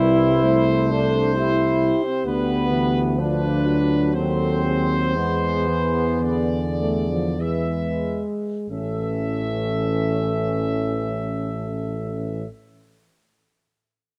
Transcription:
Already playing: tuba C2, trombone section E4, trumpet section C5
0.00 euphonium G3, french horn section B4
0.42 euphonium A3, french horn section C5
0.88 trombone section D4, french horn section A4
1.33 trombone section E4, french horn section G4
2.04 trombone section C4
2.24 tuba D2, euphonium D3, trombone section B3, trumpet section B4
2.71 euphonium E3
3.18 euphonium F3, trombone section D4, french horn section F4, trumpet section B4
3.66 euphonium F#3
4.14 tuba D#2, trombone section C4, french horn section A4, trumpet section C5
4.63 french horn section G#4
5.14 tuba E2, euphonium G#3, trombone section B3, french horn section G#4
5.68 euphonium E3
6.21 euphonium D3, trumpet section D5
6.79 trombone section A3
7.09 trombone section F3
7.39 euphonium E3, trombone section G#3, french horn section B4, trumpet section E5
8.68 tuba A1, euphonium E3, trombone section C#4, french horn section A4, trumpet section E5

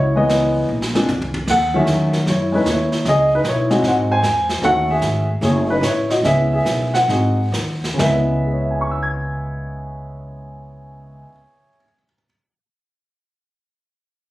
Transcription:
Already playing: upright bass C#2, grand piano E4 C#5
0.15 grand piano E3 G#3 B3 D#5
0.29 snare, hi-hat pedal
0.69 upright bass A#1
0.82 snare
0.95 grand piano F3 G#3 C4 D4, snare
1.08 upright bass C2, floor tom, hi-hat pedal
1.22 floor tom
1.34 floor tom
1.47 upright bass D#2, grand piano A4 F#5, brush sweep, kick, snare, crash
1.74 grand piano D#3 F#3 A3 C#4 G#4 E5
1.86 upright bass E2, snare, hi-hat pedal
2.13 snare
2.26 upright bass F#2, brush sweep, snare
2.30 grand piano E4 C#5
2.52 grand piano G#3 A3 C#4 E4 B4
2.56 grand piano D#4
2.64 upright bass D#2, snare, hi-hat pedal
2.69 grand piano E4 C#5
2.92 snare
3.05 upright bass C#2, grand piano D#5, brush sweep, snare
3.09 grand piano G#4
3.35 grand piano D#4 B4
3.43 upright bass B1, snare, hi-hat pedal
3.49 grand piano E4 C#5
3.70 grand piano G#3 C4 D#4 F#4, snare
3.82 upright bass G#2, brush sweep, snare
3.86 grand piano C5 F#5
4.11 grand piano C5 G#5
4.22 upright bass E2, snare, hi-hat pedal
4.49 snare
4.62 upright bass D#2, grand piano D#3 A3 C#4 F#4 A4 F#5, brush sweep, snare
4.90 grand piano G#4 E5
5.01 upright bass G#1, snare, hi-hat pedal
5.41 upright bass F#1, grand piano A3 C#4 E4 G#4 C#5, brush sweep, snare
5.70 grand piano D#4 B4
5.81 upright bass A1, grand piano E4 C#5, snare, hi-hat pedal
6.10 grand piano F#4 D#5, snare
6.23 upright bass C#2, grand piano B3 C#4 E4 G#4 E5, brush sweep, snare
6.53 grand piano G#4 E5
6.65 upright bass B1, snare, hi-hat pedal
6.94 grand piano C5 F#5, snare
7.08 upright bass G#1, grand piano C4 D#4 F#4 G#4, brush sweep, snare
7.52 upright bass D#2, snare, hi-hat pedal
7.84 snare
7.94 grand piano C#3 G#3
7.99 upright bass C#2, grand piano B3 E5, snare, floor tom
8.06 grand piano E4
8.46 grand piano G#4
8.54 grand piano C#5
8.61 grand piano E5
8.71 grand piano G#5
8.81 grand piano C#6
8.91 grand piano E6
9.03 grand piano G#6

